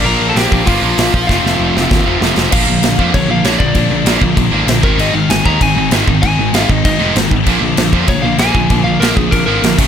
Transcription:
<<
  \new Staff \with { instrumentName = "Lead electric guitar" } { \time 4/4 \key f \mixolydian \tempo 4 = 194 <bes' bes''>8. <a' a''>16 <g' g''>4 <f' f''>2 | <f' f''>2. r4 | \key bes \mixolydian f''2 des''8 f''8 des''8 d''8~ | d''4. r2 bes'8 |
ees''8 f''8 aes''8 bes''8 aes''4 r4 | aes''4 f''8 ees''8 ees''4 r4 | r2 des''8 f''8 aes''4~ | aes''8 f''8 bes'8 aes'8 bes'8 bes'4 r8 | }
  \new Staff \with { instrumentName = "Distorted electric guitar" } { \clef bass \time 4/4 \key f \mixolydian <bes, f bes d'>2.~ <bes, f bes d'>8 r8 | <f, c f a c'>1 | \key bes \mixolydian <bes, f bes d'>2~ <bes, f bes d'>8 <bes, f bes d'>8 <bes, f bes d'>4 | <bes, f bes d'>2~ <bes, f bes d'>8 <bes, f bes d'>8 <bes, f bes d'>8 <aes, ees aes c' ees'>8~ |
<aes, ees aes c' ees'>2 <aes, ees aes c' ees'>8 <aes, ees aes c' ees'>4 <aes, ees aes c' ees'>8~ | <aes, ees aes c' ees'>2 <aes, ees aes c' ees'>8 <aes, ees aes c' ees'>4 r8 | <bes, d f bes d'>2~ <bes, d f bes d'>8 <bes, d f bes d'>8 <bes, d f bes d'>4 | <bes, d f bes d'>2~ <bes, d f bes d'>8 <bes, d f bes d'>8 <bes, d f bes d'>8 <ges, des ges bes des'>8 | }
  \new Staff \with { instrumentName = "Distorted electric guitar" } { \clef bass \time 4/4 \key f \mixolydian <bes, f bes>2 <bes, f bes>8 <bes, f bes>4 r8 | <f, c f>2~ <f, c f>8 <f, c f>8 <f, c f>4 | \key bes \mixolydian <bes, f bes>8 <bes, f>8 <bes, f>8 <bes, f bes>8 <bes, f>8 <bes, f>8 <bes, f bes>8 <bes, f>8 | <bes, f>8 <bes, f>8 <bes, f bes>8 <bes, f>8 <bes, f>8 <bes, f bes>8 <bes, f>8 <aes, ees aes>8 |
<aes, ees aes>8 <aes, ees>8 <aes, ees>8 <aes, ees aes>8 <aes, ees>8 <aes, ees>8 <aes, ees aes>8 <aes, ees>8 | <aes, ees>8 <aes, ees>8 <aes, ees aes>8 <aes, ees>8 <aes, ees>8 <aes, ees aes>8 <aes, ees>8 <aes, ees>8 | <bes, f bes>8 <bes, f>8 <bes, f>8 <bes, f bes>8 <bes, f>8 <bes, f>8 <bes, f bes>8 <bes, f>8 | <bes, f>8 <bes, f>8 <bes, f bes>8 <bes, f>8 <bes, f>8 <bes, f bes>8 <bes, f>8 <ges, des ges>8 | }
  \new Staff \with { instrumentName = "Distorted electric guitar" } { \clef bass \time 4/4 \key f \mixolydian <bes, f bes d'>2 <bes, f bes d'>8 <bes, f bes d'>4 r8 | <f, c f a c'>2~ <f, c f a c'>8 <f, c f a c'>8 <f, c f a c'>4 | \key bes \mixolydian <bes, d f>8 <bes, d>8 <bes, d>8 <bes, d f>8 <bes, d>8 <bes, d>8 <bes, d f>8 <bes, d>8 | <bes, d>8 <bes, d>8 <bes, d f>8 <bes, d>8 <bes, d>8 <bes, d f>8 <bes, d>8 <aes, ees aes>8 |
<aes, ees aes>8 <aes, ees>8 <aes, ees>8 <aes, ees aes>8 <aes, ees>8 <aes, ees>8 <aes, ees aes>8 <aes, ees>8 | <aes, ees>8 <aes, ees>8 <aes, ees aes>8 <aes, ees>8 <aes, ees>8 <aes, ees aes>8 <aes, ees>8 <aes, ees>8 | <bes, d f>8 <bes, d>8 <bes, d>8 <bes, d f>8 <bes, d>8 <bes, d>8 <bes, d f>8 <bes, d>8 | <bes, d>8 <bes, d>8 <bes, d f>8 <bes, d>8 <bes, d>8 <bes, d f>8 <bes, d>8 <ges, des ges>8 | }
  \new Staff \with { instrumentName = "Picked electric bass" } { \clef bass \time 4/4 \key f \mixolydian bes,,8 bes,,8 bes,,8 bes,,8 g,,8 bes,,8 bes,,8 bes,,8 | f,,8 f,,8 f,,8 f,,8 ees,8 f,,8 f,,8 f,,8 | \key bes \mixolydian bes,,8 bes,,8 bes,,8 f,8 bes,,8 bes,,8 bes,,8 bes,,8 | bes,,8 bes,,8 bes,,8 bes,,8 bes,,8 aes,,8 bes,,8 aes,,8 |
aes,,8 aes,,8 aes,,8 ees,8 aes,,8 aes,,8 aes,,8 aes,,8 | aes,,8 aes,,8 aes,,8 aes,,8 aes,,8 f,,8 aes,,8 aes,,8 | bes,,8 bes,,8 bes,,8 f,8 bes,,8 bes,,8 bes,,8 bes,,8 | bes,,8 bes,,8 bes,,8 bes,,8 bes,,8 aes,,8 bes,,8 ges,,8 | }
  \new DrumStaff \with { instrumentName = "Drums" } \drummode { \time 4/4 r4 <hho sn>8 bd8 <hho bd>4 <hho sn>8 bd8 | <bd sn>8 sn8 r8 sn8 <bd sn>4 sn8 sn8 | <cymc bd>4 <cymc sn>8 bd8 <cymc bd>4 <cymc sn>8 bd8 | <cymc bd>4 <cymc sn>8 bd8 <cymc bd>4 <cymc sn>8 bd8 |
cymc4 <cymc sn>8 bd8 <cymc bd>4 <cymc sn>8 bd8 | <cymc bd>4 <cymc sn>8 bd8 <cymc bd>4 <cymc sn>8 bd8 | <cymc bd>4 <cymc sn>8 bd8 <cymc bd>4 <cymc sn>8 bd8 | <cymc bd>4 <cymc sn>8 bd8 <cymc bd>4 <cymc sn>8 <cymc bd>8 | }
>>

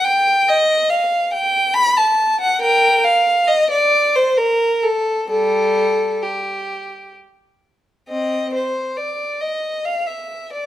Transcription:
\new Staff \with { instrumentName = "Violin" } { \time 3/4 \key g \minor \tempo 4 = 68 g''8 ees''8 f''8 g''8 b''16 a''8 fis''16 | <bes' g''>8 f''8 ees''16 d''8 c''16 bes'8 a'8 | <g a'>4 g'4 r4 | \key c \minor <c' ees''>8 c''8 d''8 ees''8 f''16 e''8 d''16 | }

